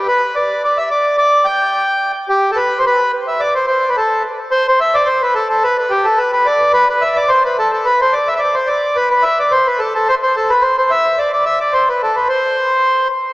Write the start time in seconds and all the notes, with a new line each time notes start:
0.08 B4
0.35 D5
0.64 D5
0.78 E5
0.91 D5
1.18 D5
1.45 G5
2.29 G4
2.52 A4
2.56 B4
2.79 C5
2.86 B4
3.28 E5
3.40 D5
3.55 C5
3.67 C5
3.89 B4
3.97 A4
4.51 C5
4.68 C5
4.80 E5
4.94 D5
5.06 C5
5.22 B4
5.35 A4
5.49 A4
5.64 B4
5.79 B4
5.90 G4
6.05 A4
6.18 B4
6.33 B4
6.46 D5
6.74 B4
6.90 B4
7.01 E5
7.16 D5
7.29 C5
7.45 B4
7.59 A4
7.73 A4
7.85 B4
8.01 C5
8.13 D5
8.28 E5
8.36 D5 E5
8.54 C5
8.67 D5
8.96 B4
9.11 B4
9.23 E5
9.39 D5
9.52 C5
9.67 B4
9.79 A4
9.95 A4
10.08 C5
10.23 C5
10.36 A4
10.50 B4
10.62 C5
10.78 C5
10.90 E5
11.18 D5
11.33 D5
11.45 E5
11.61 D5
11.73 C5
11.89 B4
12.03 A4
12.16 B4
12.29 C5